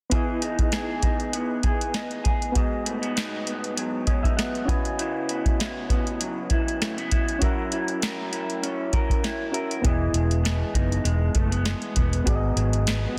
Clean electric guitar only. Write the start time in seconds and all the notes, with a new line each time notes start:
0.12 E3 G#4
0.42 D#4
0.72 G#4
1.03 D#4
1.33 B3
1.64 G#4
1.94 D#4
2.24 G#4
2.55 G#2 D#4
2.85 A3
3.02 B3
3.16 D#4
3.47 B3
3.77 F#3
4.08 C#4
4.24 D#4
4.37 B3
4.68 C#3
4.99 C#3 E4
5.29 B3
5.59 E4
5.89 B3
6.20 F#3
6.51 E4
6.82 A3
6.98 B3
7.12 E4
7.42 F#3 A#4
7.73 E4
8.02 A#4
8.32 E4
8.63 C#4
8.94 A#4
9.24 E4
9.54 A#4
9.84 E3
10.14 G#3
10.44 B3
10.74 D#4
11.04 G#3
11.35 A3
11.52 B3
11.65 G#3
11.96 B3
12.26 G#2
12.56 F#3
12.87 B3